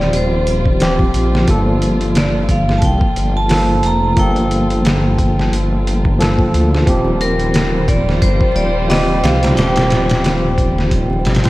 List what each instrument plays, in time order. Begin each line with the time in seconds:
Already playing: detuned saw bass D#1, tine electric piano F3 C4 G4, violin section G3 F4 C5, vibraphone D5
0.00 snare
0.13 detuned saw bass D#1, vibraphone C5, closed hi-hat
0.47 closed hi-hat
0.66 kick
0.80 tine electric piano F3 C4 G4, snare, closed hi-hat
0.99 kick
1.14 detuned saw bass A#1, closed hi-hat
1.35 snare
1.48 detuned saw bass G1, tine electric piano F3 A#3 A4, kick, closed hi-hat
1.82 closed hi-hat
2.01 closed hi-hat
2.15 vibraphone D5, snare, closed hi-hat
2.49 vibraphone F5, kick, closed hi-hat
2.69 snare
2.78 vibraphone A5, closed hi-hat
2.82 detuned saw bass C2, vibraphone G5, kick
3.01 kick
3.16 detuned saw bass G1, closed hi-hat
3.37 vibraphone A5
3.49 tine electric piano F3 A#3 A4, snare, open hi-hat
3.83 detuned saw bass F1, vibraphone A#5, closed hi-hat
4.16 detuned saw bass G1, tine electric piano F3 A#3 A4, vibraphone G5, kick, closed hi-hat
4.36 closed hi-hat
4.51 closed hi-hat
4.70 closed hi-hat
4.85 snare, closed hi-hat
5.18 kick, closed hi-hat
5.39 snare
5.52 detuned saw bass G1, closed hi-hat
5.87 closed hi-hat
6.05 kick
6.19 tine electric piano F3 A#3 A4, snare, closed hi-hat
6.39 kick
6.53 detuned saw bass D2, closed hi-hat
6.74 snare
6.86 detuned saw bass D#1, tine electric piano F3 C4 G4, violin section G3 F4 C5, kick, closed hi-hat
7.21 vibraphone A#4, closed hi-hat
7.40 closed hi-hat
7.54 snare, closed hi-hat
7.88 vibraphone D5, kick, closed hi-hat
8.09 snare
8.22 detuned saw bass G1, vibraphone C5, kick, closed hi-hat
8.41 kick
8.56 detuned saw bass D#1, vibraphone D5, closed hi-hat
8.88 tine electric piano F3 C4 G4, vibraphone D#5, snare, open hi-hat
9.23 detuned saw bass C2, vibraphone F5, snare, closed hi-hat
9.43 snare, closed hi-hat
9.55 detuned saw bass D#1, tine electric piano F3 C4 G4, vibraphone G5, closed hi-hat
9.59 snare
9.76 snare, closed hi-hat
9.90 snare, closed hi-hat
10.09 snare, closed hi-hat
10.24 snare, closed hi-hat
10.58 kick, closed hi-hat
10.78 snare
10.91 detuned saw bass D#1, kick, closed hi-hat
11.25 detuned saw bass G1, snare, closed hi-hat
11.35 snare, closed hi-hat
11.43 tine electric piano F3 C4 C5, snare, closed hi-hat